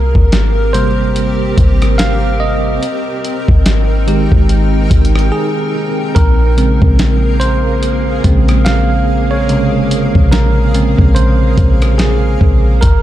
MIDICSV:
0, 0, Header, 1, 5, 480
1, 0, Start_track
1, 0, Tempo, 833333
1, 1628, Time_signature, 4, 2, 24, 8
1, 7502, End_track
2, 0, Start_track
2, 0, Title_t, "Ambient pad"
2, 0, Program_c, 0, 92
2, 0, Note_on_c, 0, 60, 82
2, 0, Note_on_c, 0, 67, 77
2, 0, Note_on_c, 0, 70, 73
2, 1609, Note_off_c, 0, 67, 0
2, 1630, Note_on_c, 0, 63, 75
2, 1630, Note_on_c, 0, 79, 77
2, 3525, Note_off_c, 0, 60, 0
2, 3530, Note_off_c, 0, 63, 0
2, 3530, Note_off_c, 0, 79, 0
2, 3546, Note_on_c, 0, 58, 79
2, 3546, Note_on_c, 0, 68, 77
2, 3547, Note_on_c, 0, 77, 91
2, 7364, Note_off_c, 0, 58, 0
2, 7364, Note_off_c, 0, 68, 0
2, 7364, Note_off_c, 0, 77, 0
2, 7366, Note_off_c, 0, 70, 0
2, 7502, End_track
3, 0, Start_track
3, 0, Title_t, "Tine electric piano"
3, 0, Program_c, 1, 4
3, 0, Control_c, 1, 64, 127
3, 0, Note_on_c, 1, 70, 86
3, 162, Note_off_c, 1, 70, 0
3, 422, Note_on_c, 1, 72, 89
3, 427, Note_on_c, 1, 48, 54
3, 429, Note_on_c, 1, 55, 53
3, 432, Note_on_c, 1, 58, 59
3, 761, Note_off_c, 1, 48, 0
3, 762, Note_off_c, 1, 55, 0
3, 764, Note_off_c, 1, 58, 0
3, 1141, Note_on_c, 1, 77, 105
3, 1167, Note_off_c, 1, 72, 0
3, 1382, Note_on_c, 1, 75, 94
3, 1392, Note_off_c, 1, 77, 0
3, 1637, Control_c, 1, 64, 0
3, 1729, Control_c, 1, 64, 127
3, 2322, Note_off_c, 1, 75, 0
3, 2346, Note_on_c, 1, 51, 54
3, 2349, Note_on_c, 1, 67, 52
3, 2353, Note_on_c, 1, 56, 61
3, 3063, Note_on_c, 1, 68, 89
3, 3524, Note_off_c, 1, 51, 0
3, 3526, Note_off_c, 1, 67, 0
3, 3527, Note_off_c, 1, 56, 0
3, 3542, Note_on_c, 1, 70, 97
3, 3556, Control_c, 1, 64, 0
3, 3560, Note_off_c, 1, 68, 0
3, 3640, Control_c, 1, 64, 127
3, 3785, Note_on_c, 1, 49, 55
3, 3789, Note_on_c, 1, 56, 50
3, 3792, Note_on_c, 1, 60, 61
3, 4120, Note_off_c, 1, 49, 0
3, 4122, Note_off_c, 1, 56, 0
3, 4124, Note_off_c, 1, 60, 0
3, 4261, Note_on_c, 1, 72, 103
3, 4287, Note_off_c, 1, 70, 0
3, 4748, Note_on_c, 1, 49, 55
3, 4749, Note_on_c, 1, 56, 51
3, 4752, Note_on_c, 1, 60, 57
3, 4965, Note_off_c, 1, 49, 0
3, 4966, Note_off_c, 1, 56, 0
3, 4967, Note_off_c, 1, 60, 0
3, 4981, Note_on_c, 1, 77, 114
3, 5006, Note_off_c, 1, 72, 0
3, 5362, Note_on_c, 1, 73, 100
3, 5375, Note_off_c, 1, 77, 0
3, 5468, Note_on_c, 1, 49, 59
3, 5470, Note_on_c, 1, 56, 58
3, 5475, Note_on_c, 1, 48, 65
3, 5802, Note_off_c, 1, 49, 0
3, 5803, Note_off_c, 1, 56, 0
3, 5805, Note_off_c, 1, 48, 0
3, 5942, Note_on_c, 1, 70, 88
3, 5963, Note_off_c, 1, 73, 0
3, 6188, Note_on_c, 1, 49, 48
3, 6190, Note_on_c, 1, 56, 46
3, 6192, Note_on_c, 1, 60, 55
3, 6402, Note_off_c, 1, 70, 0
3, 6405, Note_off_c, 1, 49, 0
3, 6406, Note_off_c, 1, 56, 0
3, 6407, Note_off_c, 1, 60, 0
3, 6421, Note_on_c, 1, 72, 98
3, 6901, Note_on_c, 1, 68, 85
3, 6919, Note_off_c, 1, 72, 0
3, 7379, Note_on_c, 1, 70, 90
3, 7396, Control_c, 1, 64, 0
3, 7399, Note_off_c, 1, 68, 0
3, 7500, Control_c, 1, 64, 127
3, 7502, Note_off_c, 1, 70, 0
3, 7502, End_track
4, 0, Start_track
4, 0, Title_t, "808-style bass"
4, 0, Program_c, 2, 38
4, 0, Note_on_c, 2, 36, 100
4, 81, Note_off_c, 2, 36, 0
4, 88, Note_on_c, 2, 32, 95
4, 885, Note_off_c, 2, 32, 0
4, 908, Note_on_c, 2, 32, 100
4, 1605, Note_off_c, 2, 32, 0
4, 2008, Note_on_c, 2, 32, 99
4, 2468, Note_off_c, 2, 32, 0
4, 2488, Note_on_c, 2, 32, 98
4, 2815, Note_off_c, 2, 32, 0
4, 2828, Note_on_c, 2, 32, 99
4, 3058, Note_off_c, 2, 32, 0
4, 3549, Note_on_c, 2, 34, 105
4, 3913, Note_off_c, 2, 34, 0
4, 3928, Note_on_c, 2, 34, 92
4, 4725, Note_off_c, 2, 34, 0
4, 4749, Note_on_c, 2, 34, 111
4, 5609, Note_on_c, 2, 32, 98
4, 5617, Note_off_c, 2, 34, 0
4, 5836, Note_off_c, 2, 32, 0
4, 5848, Note_on_c, 2, 34, 100
4, 6308, Note_off_c, 2, 34, 0
4, 6328, Note_on_c, 2, 34, 100
4, 6655, Note_off_c, 2, 34, 0
4, 6668, Note_on_c, 2, 34, 108
4, 7129, Note_off_c, 2, 34, 0
4, 7149, Note_on_c, 2, 34, 100
4, 7379, Note_off_c, 2, 34, 0
4, 7389, Note_on_c, 2, 32, 100
4, 7502, Note_off_c, 2, 32, 0
4, 7502, End_track
5, 0, Start_track
5, 0, Title_t, "Drums"
5, 87, Note_on_c, 9, 36, 93
5, 144, Note_off_c, 9, 36, 0
5, 186, Note_on_c, 9, 42, 76
5, 189, Note_on_c, 9, 38, 108
5, 244, Note_off_c, 9, 42, 0
5, 246, Note_off_c, 9, 38, 0
5, 428, Note_on_c, 9, 42, 61
5, 486, Note_off_c, 9, 42, 0
5, 667, Note_on_c, 9, 42, 74
5, 725, Note_off_c, 9, 42, 0
5, 907, Note_on_c, 9, 36, 102
5, 908, Note_on_c, 9, 42, 57
5, 965, Note_off_c, 9, 36, 0
5, 965, Note_off_c, 9, 42, 0
5, 1047, Note_on_c, 9, 42, 53
5, 1050, Note_on_c, 9, 37, 91
5, 1105, Note_off_c, 9, 42, 0
5, 1107, Note_off_c, 9, 37, 0
5, 1147, Note_on_c, 9, 42, 73
5, 1149, Note_on_c, 9, 38, 118
5, 1204, Note_off_c, 9, 42, 0
5, 1207, Note_off_c, 9, 38, 0
5, 1628, Note_on_c, 9, 42, 76
5, 1685, Note_off_c, 9, 42, 0
5, 1869, Note_on_c, 9, 42, 69
5, 1927, Note_off_c, 9, 42, 0
5, 2007, Note_on_c, 9, 36, 100
5, 2064, Note_off_c, 9, 36, 0
5, 2106, Note_on_c, 9, 42, 77
5, 2109, Note_on_c, 9, 38, 111
5, 2164, Note_off_c, 9, 42, 0
5, 2166, Note_off_c, 9, 38, 0
5, 2348, Note_on_c, 9, 42, 63
5, 2406, Note_off_c, 9, 42, 0
5, 2487, Note_on_c, 9, 36, 89
5, 2544, Note_off_c, 9, 36, 0
5, 2588, Note_on_c, 9, 42, 78
5, 2646, Note_off_c, 9, 42, 0
5, 2827, Note_on_c, 9, 36, 102
5, 2827, Note_on_c, 9, 42, 58
5, 2885, Note_off_c, 9, 36, 0
5, 2885, Note_off_c, 9, 42, 0
5, 2907, Note_on_c, 9, 42, 54
5, 2965, Note_off_c, 9, 42, 0
5, 2969, Note_on_c, 9, 37, 98
5, 2988, Note_on_c, 9, 42, 54
5, 3027, Note_off_c, 9, 37, 0
5, 3045, Note_off_c, 9, 42, 0
5, 3548, Note_on_c, 9, 36, 116
5, 3548, Note_on_c, 9, 42, 74
5, 3605, Note_off_c, 9, 36, 0
5, 3605, Note_off_c, 9, 42, 0
5, 3789, Note_on_c, 9, 42, 70
5, 3846, Note_off_c, 9, 42, 0
5, 3927, Note_on_c, 9, 36, 97
5, 3984, Note_off_c, 9, 36, 0
5, 4027, Note_on_c, 9, 42, 76
5, 4029, Note_on_c, 9, 38, 108
5, 4084, Note_off_c, 9, 42, 0
5, 4086, Note_off_c, 9, 38, 0
5, 4269, Note_on_c, 9, 42, 61
5, 4326, Note_off_c, 9, 42, 0
5, 4508, Note_on_c, 9, 42, 78
5, 4565, Note_off_c, 9, 42, 0
5, 4748, Note_on_c, 9, 36, 99
5, 4748, Note_on_c, 9, 42, 54
5, 4805, Note_off_c, 9, 36, 0
5, 4805, Note_off_c, 9, 42, 0
5, 4887, Note_on_c, 9, 42, 54
5, 4890, Note_on_c, 9, 37, 94
5, 4945, Note_off_c, 9, 42, 0
5, 4947, Note_off_c, 9, 37, 0
5, 4987, Note_on_c, 9, 42, 74
5, 4990, Note_on_c, 9, 38, 119
5, 5044, Note_off_c, 9, 42, 0
5, 5047, Note_off_c, 9, 38, 0
5, 5468, Note_on_c, 9, 42, 71
5, 5525, Note_off_c, 9, 42, 0
5, 5709, Note_on_c, 9, 42, 73
5, 5767, Note_off_c, 9, 42, 0
5, 5847, Note_on_c, 9, 36, 92
5, 5905, Note_off_c, 9, 36, 0
5, 5946, Note_on_c, 9, 42, 77
5, 5949, Note_on_c, 9, 38, 108
5, 6004, Note_off_c, 9, 42, 0
5, 6006, Note_off_c, 9, 38, 0
5, 6189, Note_on_c, 9, 42, 61
5, 6246, Note_off_c, 9, 42, 0
5, 6327, Note_on_c, 9, 36, 90
5, 6385, Note_off_c, 9, 36, 0
5, 6428, Note_on_c, 9, 42, 81
5, 6486, Note_off_c, 9, 42, 0
5, 6668, Note_on_c, 9, 36, 98
5, 6668, Note_on_c, 9, 42, 55
5, 6725, Note_off_c, 9, 36, 0
5, 6725, Note_off_c, 9, 42, 0
5, 6807, Note_on_c, 9, 42, 56
5, 6810, Note_on_c, 9, 37, 93
5, 6865, Note_off_c, 9, 42, 0
5, 6867, Note_off_c, 9, 37, 0
5, 6906, Note_on_c, 9, 42, 76
5, 6909, Note_on_c, 9, 38, 123
5, 6964, Note_off_c, 9, 42, 0
5, 6967, Note_off_c, 9, 38, 0
5, 7148, Note_on_c, 9, 36, 89
5, 7205, Note_off_c, 9, 36, 0
5, 7387, Note_on_c, 9, 42, 76
5, 7388, Note_on_c, 9, 36, 115
5, 7445, Note_off_c, 9, 36, 0
5, 7445, Note_off_c, 9, 42, 0
5, 7502, End_track
0, 0, End_of_file